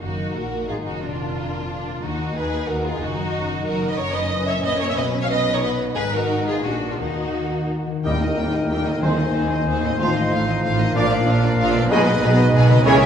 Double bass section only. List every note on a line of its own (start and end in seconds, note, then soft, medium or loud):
0.01 0.33 F#1 soft
0.36 0.68 A#1 medium
0.69 0.86 G#1 medium
0.86 1.02 F#1 soft
1.02 2.03 F1 soft
2.03 2.32 D#2 soft
2.36 2.65 D#2 medium
2.68 2.97 D#2 medium
3.00 3.29 F#1 medium
3.33 3.62 F#1 medium
3.66 3.95 F#1 medium
3.98 4.60 F#1 medium
4.63 4.97 A#1 medium
4.97 5.94 B1 medium
5.96 6.60 G#1 medium
6.64 6.99 A#1 medium
6.99 7.88 D#2 medium
8.05 8.34 D#2 medium
8.38 8.66 D#2 medium
8.70 8.99 D#2 medium
9.02 9.31 D#2 medium
9.35 9.64 D#2 medium
9.68 9.96 D#2 medium
10.01 10.29 A1 medium
10.32 10.60 A1 medium
10.64 10.92 A1 medium
10.95 11.23 A#1 medium
11.27 11.55 A#1 medium
11.59 11.87 A#1 loud
11.91 12.19 B1 loud
12.23 12.50 B1 loud
12.54 12.82 B1 loud
12.86 13.06 C#2 loud